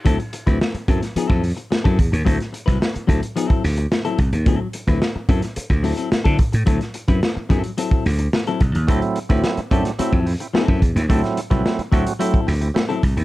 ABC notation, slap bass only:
X:1
M:4/4
L:1/16
Q:1/4=109
K:Dmix
V:1 name="Slap bass" clef=bass
D,, z2 D,, z2 F,, z2 =F,,2 z2 ^F,, E,, _E,, | D,, z2 C,, z2 D,, z3 D,,2 z2 C,, _E,, | D,, z2 D,, z2 F,, z2 D,,2 z2 D, z A,, | D,, z2 F,, z2 F,, z3 D,,2 z2 C,, _E,, |
D,, z2 D,, z2 F,, z2 =F,,2 z2 ^F,, E,, _E,, | D,, z2 C,, z2 D,, z3 D,,2 z2 C,, _E,, |]